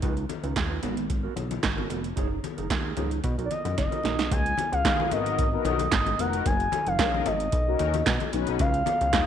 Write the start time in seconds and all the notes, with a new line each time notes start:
0.02 C#2 D#4 F4 B4, kick, closed hi-hat, low conga
0.17 muted clean electric guitar stroke, closed hi-hat
0.29 muted clean electric guitar stroke, closed hi-hat, high conga
0.43 C#2 D#4 F4 B4, closed hi-hat
0.56 D#2, kick, snare, clap, closed hi-hat, muted conga
0.70 D#4 F4 B4
0.82 G#1 B3 F#4 A#4, closed hi-hat, muted conga, high conga, low conga
0.97 muted clean electric guitar stroke, closed hi-hat
1.09 muted clean electric guitar stroke, kick, closed hi-hat, muted conga
1.23 B3 F#4 A#4
1.36 B1, muted clean electric guitar stroke, closed hi-hat, high conga
1.50 muted clean electric guitar stroke, closed hi-hat, high conga
1.62 G#1, muted clean electric guitar stroke, kick, snare, clap, closed hi-hat
1.76 B3 F#4 A#4, high conga
1.89 F1 B3 F#4 A#4, closed hi-hat, muted conga
2.03 muted clean electric guitar stroke, closed hi-hat
2.16 F#1 D#4 G#4 C#5, kick, closed hi-hat, muted conga, low conga
2.30 muted clean electric guitar stroke
2.43 muted clean electric guitar stroke, closed hi-hat, high conga
2.57 F#1 D#4 G#4 A#4, closed hi-hat
2.70 D#2, kick, snare, clap, closed hi-hat
2.84 D#4 G#4 A#4
2.97 C#2 D#4 G#4 A#4, closed hi-hat, muted conga, high conga, low conga
3.11 muted clean electric guitar stroke, closed hi-hat
3.24 B2, muted clean electric guitar stroke, kick, closed hi-hat, muted conga
3.38 B1 D#4 F#4 A#4, closed hi-hat
3.45 D5
3.51 D#5, muted clean electric guitar stroke, closed hi-hat, high conga
3.65 F#2, muted clean electric guitar stroke, closed hi-hat, high conga
3.78 F#1 D#5, muted clean electric guitar stroke, kick, snare, closed hi-hat, muted conga
3.91 D#4 F#4 A#4, closed hi-hat, high conga
4.03 A#1 D#4 F#4 A#4, snare, closed hi-hat, muted conga
4.18 B1, muted clean electric guitar stroke, snare, closed hi-hat
4.31 C#2 G#5, kick, closed hi-hat, low conga
4.46 closed hi-hat
4.58 closed hi-hat, high conga
4.72 C#2 F5, closed hi-hat
4.85 D#2 B3 D#4 F4 G#4, kick, snare, clap, closed hi-hat
5.00 high conga
5.11 G#1 B3 D#4 F#4 A#4 D#5, closed hi-hat, muted conga, high conga, low conga
5.26 closed hi-hat
5.38 kick, closed hi-hat, muted conga
5.52 B3 D#4 F#4 A#4
5.65 B1 D#5, closed hi-hat, muted conga, high conga
5.79 closed hi-hat, high conga
5.92 G#1 D#5, kick, snare, clap, closed hi-hat, muted conga
6.06 closed hi-hat, high conga
6.19 F1 B3 D#4 F#4 A#4 F#5, closed hi-hat
6.33 closed hi-hat
6.46 F#1 G#5, kick, closed hi-hat, low conga
6.60 closed hi-hat
6.72 closed hi-hat, high conga
6.87 F#1 F5, closed hi-hat
6.99 A#1 C#4 D#4 G#4 A#4, kick, snare, clap, closed hi-hat
7.15 high conga
7.26 G#1 D#5, closed hi-hat, muted conga, high conga, low conga
7.40 closed hi-hat
7.52 B1, kick, closed hi-hat
7.67 C#4 D#4 F#4 A#4
7.79 D#2, closed hi-hat, high conga
7.94 closed hi-hat, high conga
8.06 B2, kick, snare, clap, closed hi-hat
8.20 closed hi-hat, high conga
8.33 B1 C#4 D#4 F#4 B4, closed hi-hat, muted conga
8.47 B1, closed hi-hat
8.59 C#2 F5, kick, closed hi-hat, muted conga, low conga
8.74 closed hi-hat
8.86 closed hi-hat, muted conga, high conga
9.01 C#2, closed hi-hat
9.13 D#2 B3 D#4 F4 G#4, kick, snare, clap, closed hi-hat, muted conga